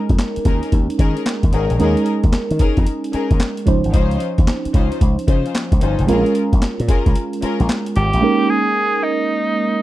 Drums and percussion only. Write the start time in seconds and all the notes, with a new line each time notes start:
0.09 kick, closed hi-hat
0.19 snare, clap, closed hi-hat
0.36 closed hi-hat
0.45 kick, closed hi-hat
0.63 closed hi-hat
0.72 kick, closed hi-hat
0.90 closed hi-hat
0.99 kick, closed hi-hat
1.17 closed hi-hat
1.26 snare, clap, closed hi-hat
1.43 kick, closed hi-hat
1.53 closed hi-hat
1.70 closed hi-hat
1.80 closed hi-hat
1.97 closed hi-hat
2.06 closed hi-hat
2.24 kick, closed hi-hat
2.33 snare, clap, closed hi-hat
2.51 closed hi-hat
2.59 kick, closed hi-hat
2.77 kick, closed hi-hat
2.87 closed hi-hat
3.04 closed hi-hat
3.13 closed hi-hat
3.31 kick, closed hi-hat
3.40 snare, clap, closed hi-hat
3.57 closed hi-hat
3.67 kick, closed hi-hat
3.84 closed hi-hat
3.94 kick, closed hi-hat
4.11 closed hi-hat
4.20 closed hi-hat
4.38 kick, closed hi-hat
4.47 snare, clap, closed hi-hat
4.65 closed hi-hat
4.74 kick, closed hi-hat
4.92 closed hi-hat
5.01 kick, closed hi-hat
5.19 closed hi-hat
5.28 kick, closed hi-hat
5.46 closed hi-hat
5.55 snare, clap, closed hi-hat
5.72 kick, closed hi-hat
5.81 closed hi-hat
5.99 closed hi-hat
6.08 closed hi-hat
6.26 closed hi-hat
6.35 closed hi-hat
6.53 kick, closed hi-hat
6.62 snare, clap, closed hi-hat
6.80 closed hi-hat
6.88 kick, closed hi-hat
7.06 kick, closed hi-hat
7.15 closed hi-hat
7.33 closed hi-hat
7.42 closed hi-hat
7.60 closed hi-hat
7.69 snare, clap, closed hi-hat
7.86 closed hi-hat
7.96 closed hi-hat
8.13 closed hi-hat